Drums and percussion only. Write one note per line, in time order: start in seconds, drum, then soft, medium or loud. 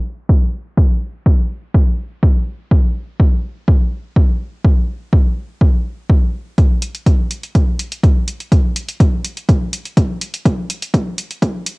0.29 kick loud
0.78 kick loud
1.26 kick loud
1.74 kick loud
2.23 kick loud
2.71 kick loud
3.19 kick loud
3.68 kick loud
4.16 kick loud
4.65 kick loud
5.13 kick loud
5.61 kick loud
6.10 kick loud
6.58 kick loud
6.58 closed hi-hat medium
6.82 closed hi-hat loud
6.95 closed hi-hat medium
7.07 kick loud
7.07 closed hi-hat medium
7.31 closed hi-hat medium
7.43 closed hi-hat medium
7.55 kick loud
7.55 closed hi-hat medium
7.79 closed hi-hat loud
7.92 closed hi-hat medium
8.03 kick loud
8.03 closed hi-hat medium
8.28 closed hi-hat medium
8.40 closed hi-hat medium
8.52 kick loud
8.52 closed hi-hat medium
8.76 closed hi-hat loud
8.89 closed hi-hat medium
9.00 kick loud
9.00 closed hi-hat medium
9.24 closed hi-hat medium
9.37 closed hi-hat medium
9.49 kick loud
9.49 closed hi-hat medium
9.73 closed hi-hat loud
9.85 closed hi-hat medium
9.97 kick loud
9.97 closed hi-hat medium
10.21 closed hi-hat medium
10.34 closed hi-hat medium
10.45 kick loud
10.45 closed hi-hat medium
10.70 closed hi-hat loud
10.82 closed hi-hat medium
10.94 kick loud
10.94 closed hi-hat medium
11.18 closed hi-hat medium
11.31 closed hi-hat medium
11.42 kick loud
11.42 closed hi-hat medium
11.66 closed hi-hat loud